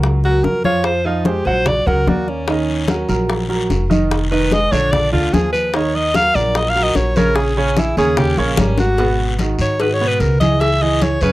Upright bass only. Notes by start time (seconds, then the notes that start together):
Already playing: C#2
0.44 F2
1.46 A#1
1.87 C#2
2.07 D#2
3.09 A#1
3.70 F1
4.72 A#1
5.12 D2
5.33 D#2
6.35 A#1
6.95 A#1
7.97 D#2
8.37 A#1
8.57 G#1
9.59 G#2
10.20 C#2
11.22 F#2